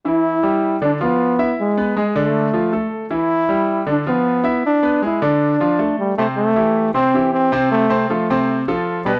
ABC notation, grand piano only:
X:1
M:4/4
L:1/8
Q:1/4=156
K:Am
V:1 name="Grand piano"
[E,E]2 [G,G]2 [D,D] [F,F]2 [Ee]- | [Ee] [B,B] [^G,^G] [D,D]2 [F,F] [A,A]2 | [E,E]2 [G,G]2 [D,D] [F,F]2 [Ee]- | [Ee] [B,B] [^G,^G] [D,D]2 [F,F] [A,A]2 |
[C,Cc]2 [E,EG]2 [C,Cc] [E,EG]2 [C,Cc]- | [C,Cc] [C,Cc] [F,FA] [C,Cc]2 [F,FA]2 [B,,B,B] |]